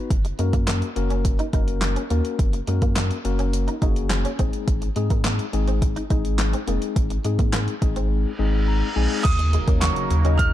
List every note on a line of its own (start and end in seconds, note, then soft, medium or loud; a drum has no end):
0.00 0.10 B3 loud
0.00 0.10 D#4 medium
0.00 0.11 F#4 medium
0.00 0.11 B4 loud
0.10 0.32 F#1 loud
0.10 kick loud
0.10 closed hi-hat medium
0.25 muted clean electric guitar stroke soft
0.25 closed hi-hat medium
0.39 0.83 F#2 medium
0.39 0.50 G#3 medium
0.39 0.87 A#3 medium
0.39 0.87 C#4 medium
0.39 0.87 F#4 medium
0.39 0.87 A#4 medium
0.39 closed hi-hat medium
0.53 0.64 A#3 medium
0.53 kick medium
0.53 closed hi-hat medium
0.67 0.79 A#3 medium
0.67 snare medium
0.67 clap loud
0.67 closed hi-hat loud
0.82 closed hi-hat soft
0.96 1.40 F#1 medium
0.96 1.44 A#3 medium
0.96 1.44 C#4 medium
0.96 1.44 F#4 medium
0.96 1.44 A#4 loud
0.96 muted clean electric guitar stroke soft
0.96 closed hi-hat medium
1.10 1.22 C#4 medium
1.10 closed hi-hat soft
1.25 muted clean electric guitar stroke soft
1.25 kick medium
1.25 closed hi-hat loud
1.39 1.50 D#4 medium
1.39 closed hi-hat medium
1.53 1.97 F#1 medium
1.53 2.01 A#3 medium
1.53 2.01 C#4 medium
1.53 1.64 D#4 medium
1.53 2.01 F#4 medium
1.53 2.02 A#4 loud
1.53 kick medium
1.53 closed hi-hat medium
1.68 closed hi-hat soft
1.81 muted clean electric guitar stroke soft
1.81 snare medium
1.81 clap loud
1.81 closed hi-hat medium
1.96 2.07 C#4 medium
1.96 closed hi-hat medium
2.10 2.21 D#2 medium
2.10 2.59 A#3 medium
2.10 2.22 A#3 medium
2.10 2.59 C#4 medium
2.10 2.59 F#4 medium
2.10 2.59 A#4 medium
2.10 closed hi-hat medium
2.25 closed hi-hat medium
2.39 2.61 F#1 loud
2.39 kick loud
2.39 closed hi-hat medium
2.53 muted clean electric guitar stroke soft
2.53 closed hi-hat medium
2.67 3.11 F#2 medium
2.67 2.79 G#3 medium
2.67 3.16 A#3 medium
2.67 3.16 C#4 medium
2.67 3.16 F#4 medium
2.67 3.16 A#4 medium
2.67 closed hi-hat medium
2.82 2.93 A#3 medium
2.82 kick medium
2.82 closed hi-hat medium
2.96 3.07 A#3 medium
2.96 snare medium
2.96 clap loud
2.96 closed hi-hat loud
3.11 closed hi-hat medium
3.25 3.68 F#1 medium
3.25 3.73 A#3 loud
3.25 3.73 C#4 medium
3.25 3.73 F#4 medium
3.25 3.73 A#4 loud
3.25 muted clean electric guitar stroke soft
3.25 closed hi-hat medium
3.39 3.50 C#4 medium
3.39 closed hi-hat medium
3.53 muted clean electric guitar stroke soft
3.53 closed hi-hat loud
3.68 3.79 D#4 medium
3.68 closed hi-hat soft
3.82 4.25 F#1 loud
3.82 4.30 A#3 loud
3.82 4.30 C#4 medium
3.82 3.93 D#4 medium
3.82 4.30 F#4 medium
3.82 4.30 G#4 loud
3.82 kick loud
3.82 closed hi-hat medium
3.96 closed hi-hat medium
4.10 muted clean electric guitar stroke soft
4.10 snare medium
4.10 clap loud
4.10 closed hi-hat medium
4.25 4.36 C#4 medium
4.25 closed hi-hat medium
4.39 4.50 G#1 medium
4.39 4.87 G#3 medium
4.39 4.87 C4 medium
4.39 4.50 C4 medium
4.39 4.87 D#4 medium
4.39 4.87 G#4 loud
4.39 kick medium
4.39 closed hi-hat medium
4.53 closed hi-hat medium
4.68 4.89 G#1 loud
4.68 kick loud
4.68 closed hi-hat medium
4.82 muted clean electric guitar stroke soft
4.82 closed hi-hat medium
4.96 5.40 G#2 medium
4.96 5.44 G#3 medium
4.96 5.07 G#3 medium
4.96 5.44 C4 medium
4.96 5.44 D#4 medium
4.96 5.44 G#4 loud
4.96 closed hi-hat medium
5.10 5.22 A#3 medium
5.10 kick medium
5.10 closed hi-hat medium
5.24 5.36 A#3 medium
5.24 snare medium
5.24 clap loud
5.24 closed hi-hat loud
5.39 closed hi-hat soft
5.53 5.97 G#1 medium
5.53 6.01 G#3 medium
5.53 6.01 C4 medium
5.53 6.01 D#4 medium
5.53 6.02 G#4 loud
5.53 muted clean electric guitar stroke soft
5.53 closed hi-hat medium
5.67 5.79 C4 medium
5.67 closed hi-hat soft
5.82 muted clean electric guitar stroke soft
5.82 kick loud
5.82 closed hi-hat loud
5.96 6.07 D#4 medium
5.96 closed hi-hat medium
6.10 6.54 G#1 loud
6.10 6.58 G#3 loud
6.10 6.58 C4 medium
6.10 6.22 D#4 medium
6.10 6.59 D#4 medium
6.10 6.59 G#4 loud
6.10 kick loud
6.10 closed hi-hat medium
6.25 closed hi-hat medium
6.39 muted clean electric guitar stroke soft
6.39 snare medium
6.39 clap loud
6.39 closed hi-hat medium
6.53 6.64 C4 medium
6.53 closed hi-hat medium
6.67 6.79 F1 medium
6.67 7.16 G#3 medium
6.67 6.79 A#3 medium
6.67 7.16 C4 medium
6.67 7.16 D#4 medium
6.67 7.16 G#4 medium
6.67 closed hi-hat medium
6.82 closed hi-hat medium
6.96 7.18 G#1 loud
6.96 kick loud
6.96 closed hi-hat medium
7.10 muted clean electric guitar stroke soft
7.10 closed hi-hat medium
7.24 7.68 G#2 medium
7.24 7.73 G#3 medium
7.24 7.36 G#3 medium
7.24 7.73 C4 medium
7.24 7.73 D#4 medium
7.24 7.73 G#4 medium
7.24 closed hi-hat medium
7.39 7.50 A#3 medium
7.39 kick medium
7.39 closed hi-hat medium
7.53 7.64 A#3 medium
7.53 snare medium
7.53 clap loud
7.53 closed hi-hat loud
7.68 closed hi-hat medium
7.82 8.25 G#1 medium
7.82 8.30 G#3 loud
7.82 8.30 C4 medium
7.82 8.30 D#4 medium
7.82 8.30 G#4 loud
7.82 muted clean electric guitar stroke soft
7.82 kick medium
7.82 closed hi-hat medium
7.96 8.07 C4 medium
7.96 closed hi-hat medium
8.10 reverse cymbal medium
8.39 8.83 G#1 loud
8.39 8.87 G#3 loud
8.39 8.87 C4 medium
8.39 8.87 D#4 medium
8.39 8.87 G#4 loud
8.68 8.94 A#5 medium
8.96 9.07 A#1 loud
8.96 9.25 G#3 loud
8.96 9.25 C4 medium
8.96 9.25 D#4 medium
8.96 9.25 G#4 loud
8.96 9.23 G#5 medium
9.23 9.57 D#2 loud
9.23 10.53 C#3 medium
9.23 10.53 F#3 medium
9.23 10.53 A#3 medium
9.23 10.53 D#4 medium
9.23 10.53 A#4 medium
9.23 9.83 D#6 loud
9.23 kick loud
9.23 closed hi-hat medium
9.23 crash loud
9.23 impact medium
9.39 muted clean electric guitar stroke soft
9.39 closed hi-hat medium
9.53 9.65 G#3 medium
9.53 closed hi-hat medium
9.67 9.89 D#2 loud
9.67 9.79 A#3 medium
9.67 10.16 C#4 medium
9.67 10.16 D#4 medium
9.67 10.16 F#4 medium
9.67 10.16 A#4 medium
9.67 10.16 C#5 medium
9.67 kick loud
9.67 closed hi-hat medium
9.80 9.93 A#3 medium
9.80 10.40 C#6 medium
9.80 snare loud
9.80 clap loud
9.80 closed hi-hat loud
9.96 closed hi-hat medium
10.11 10.53 D#2 loud
10.11 muted clean electric guitar stroke soft
10.11 closed hi-hat medium
10.25 10.53 C#4 medium
10.25 10.36 C#4 medium
10.25 10.53 D#4 medium
10.25 10.53 F#4 medium
10.25 10.53 A#4 medium
10.25 10.53 D#5 medium
10.25 closed hi-hat medium
10.38 10.53 F6 loud
10.38 muted clean electric guitar stroke soft
10.38 kick loud
10.38 closed hi-hat loud